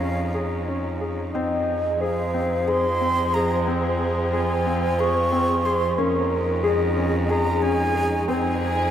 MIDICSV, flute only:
0, 0, Header, 1, 2, 480
1, 0, Start_track
1, 0, Key_signature, -4, "minor"
1, 0, Tempo, 666667
1, 974, Time_signature, 7, 3, 24, 8
1, 2411, Tempo, 657895
1, 6466, End_track
2, 0, Start_track
2, 0, Title_t, "Flute"
2, 0, Program_c, 0, 73
2, 0, Note_on_c, 0, 77, 79
2, 492, Note_off_c, 0, 77, 0
2, 1464, Note_on_c, 0, 77, 76
2, 1930, Note_on_c, 0, 84, 95
2, 1941, Note_off_c, 0, 77, 0
2, 2405, Note_on_c, 0, 82, 78
2, 2416, Note_off_c, 0, 84, 0
2, 2648, Note_off_c, 0, 82, 0
2, 3132, Note_on_c, 0, 80, 83
2, 3613, Note_on_c, 0, 85, 97
2, 3624, Note_off_c, 0, 80, 0
2, 4094, Note_on_c, 0, 84, 81
2, 4104, Note_off_c, 0, 85, 0
2, 4331, Note_off_c, 0, 84, 0
2, 4817, Note_on_c, 0, 75, 88
2, 5292, Note_on_c, 0, 82, 101
2, 5303, Note_off_c, 0, 75, 0
2, 5529, Note_on_c, 0, 80, 109
2, 5540, Note_off_c, 0, 82, 0
2, 6007, Note_off_c, 0, 80, 0
2, 6017, Note_on_c, 0, 80, 99
2, 6466, Note_off_c, 0, 80, 0
2, 6466, End_track
0, 0, End_of_file